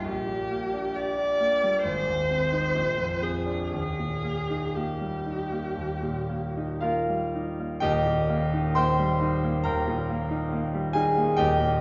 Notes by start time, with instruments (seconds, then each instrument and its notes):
0.04 grand piano A#1, viola G4
0.28 grand piano A#2
0.51 grand piano A#3
0.74 grand piano D4
0.95 grand piano G4, viola D5
1.18 grand piano D4
1.40 grand piano A#3
1.63 grand piano G3
1.83 grand piano G#1, viola C5
2.07 grand piano D#2
2.31 grand piano C4
2.52 grand piano D#4
2.74 grand piano A#1
2.98 grand piano F2
3.21 grand piano C4, viola G#4
3.46 grand piano D4
3.72 grand piano D#2, viola G#4
3.99 grand piano A#2
4.24 grand piano A#3
4.50 grand piano D#4
4.75 grand piano A#3, viola G4
5.01 grand piano G3
5.26 grand piano D#4
5.52 grand piano A#3
5.76 grand piano D#2
6.02 grand piano A#2
6.29 grand piano A#3
6.57 grand piano D#4
6.80 grand piano A#3 F4 A#4 F5
7.09 grand piano G3
7.35 grand piano D#4
7.60 grand piano A#3
7.80 grand piano D#1 D#2 G4 D#5 G5
8.06 grand piano A#2
8.29 grand piano A#3
8.54 grand piano D#4
8.75 grand piano A#3 C5 G5 C6
8.99 grand piano G3
9.21 grand piano D#4
9.44 grand piano A#3
9.64 grand piano D#2 A#4 G5 A#5
9.87 grand piano A#2
10.10 grand piano A#3
10.31 grand piano D#4
10.52 grand piano A#3
10.74 grand piano G3
10.93 grand piano D#4 G#4 G#5
11.17 grand piano A#3
11.37 grand piano D#1 D#2 G4 D#5 G5
11.60 grand piano A#2